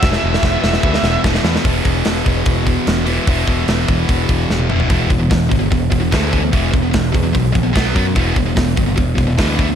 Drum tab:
HH |----------------|o-o-o-o-o-o-o-o-|o-o-o-o-o-o-----|o-o-o-o-o-o-o-o-|
SD |oo-oo-oo-oo-oooo|----o-------o---|----o-------o---|----o-------o---|
T1 |----------------|----------------|-------------o--|----------------|
T2 |----------------|----------------|--------------o-|----------------|
FT |----------------|----------------|---------------o|----------------|
BD |o---o---o---o---|o-o---o-o-o-----|o-o---o-o-o-----|o-o-o-o-o-o-o-o-|

HH |o-o-o-o-o-o-o-o-|o-o-o-o-o-o-o-o-|
SD |----o-------o---|----o-------o---|
T1 |----------------|----------------|
T2 |----------------|----------------|
FT |----------------|----------------|
BD |o-o-o-o-o-o-o-o-|o-o-o-o-o-o-o-o-|